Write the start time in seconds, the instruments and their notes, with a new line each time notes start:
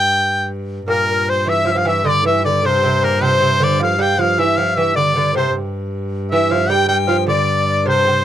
Already playing: viola da gamba G2, shawm G5
0.88 viola da gamba G2, lute A#2, recorder A#4, shawm A#4
1.09 recorder A#4
1.29 recorder C5, shawm C5
1.46 lute E3, recorder E5, shawm E5
1.65 lute F3, shawm F5
1.72 lute F3, shawm E5
1.77 recorder F5, shawm F5
1.85 lute E3, recorder E5, shawm E5
2.05 lute D3, recorder D5
2.09 shawm D5
2.25 lute E3, recorder E5, shawm E5
2.45 lute D3, recorder D5, shawm D5
2.65 lute C3, recorder C5, shawm C5
2.83 lute C3
3.03 lute A#2, shawm A#4
3.21 lute C3, recorder C5, shawm C5
3.41 lute C3
3.60 lute D3, shawm D5
3.80 lute F3, recorder F5, shawm F5
3.99 lute G3, shawm G5
4.18 lute F3, shawm F5
4.38 lute E3, recorder E5, shawm E5
4.57 lute F3, shawm F5
4.77 lute E3, recorder E5, shawm E5
4.96 lute D3, recorder D5, shawm D5
5.16 lute D3, recorder D5
5.34 lute C3, recorder C5, shawm C5
5.54 viola da gamba G2
6.31 lute E3, shawm E5, recorder E5
6.51 lute F3, shawm F5
6.69 lute G3, shawm G5, recorder G5
6.88 lute G3, shawm G5, recorder G5
7.08 lute F3, shawm F5
7.26 lute D3, recorder D5, shawm D5
7.68 recorder D5
7.86 lute C3, recorder C5, shawm C5
8.06 lute C3